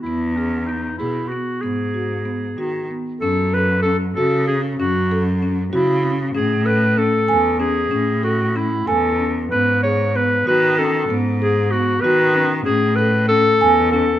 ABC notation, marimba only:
X:1
M:5/8
L:1/8
Q:1/4=95
K:F#dor
V:1 name="Marimba"
B, G B, G B, | B, F B, F B, | C A C F C | C A C F C |
C A C g C | C A C g C | B, G B, F C | B, G B, F C |
C A C g C |]